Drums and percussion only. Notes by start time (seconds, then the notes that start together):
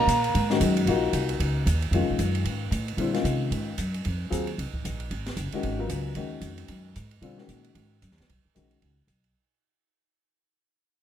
0.09 hi-hat pedal, ride
0.24 ride
0.35 ride
0.50 snare
0.61 hi-hat pedal, ride
0.77 ride
0.87 ride
1.13 hi-hat pedal, ride
1.29 ride
1.40 ride
1.67 hi-hat pedal, ride
1.82 ride
1.93 ride
2.19 hi-hat pedal, ride
2.35 ride
2.45 ride
2.72 hi-hat pedal, ride
2.88 ride
2.98 ride
3.14 snare, ride
3.25 hi-hat pedal, ride
3.52 ride
3.78 hi-hat pedal, ride
3.94 ride
4.05 ride
4.32 hi-hat pedal, ride
4.47 ride
4.59 ride
4.74 kick
4.85 hi-hat pedal, ride
5.00 ride
5.11 ride
5.26 snare, ride
5.37 hi-hat pedal, ride
5.52 ride
5.63 ride
5.89 hi-hat pedal, ride
6.15 ride
6.41 hi-hat pedal, ride
6.58 ride
6.68 ride
6.96 hi-hat pedal, ride
7.11 ride
7.22 ride
7.38 snare
7.49 hi-hat pedal, ride
7.64 ride
7.75 ride
8.02 hi-hat pedal, ride
8.11 snare
8.18 snare, ride
8.29 ride
8.56 hi-hat pedal, ride
8.71 ride
8.82 ride
9.08 hi-hat pedal, ride
9.24 ride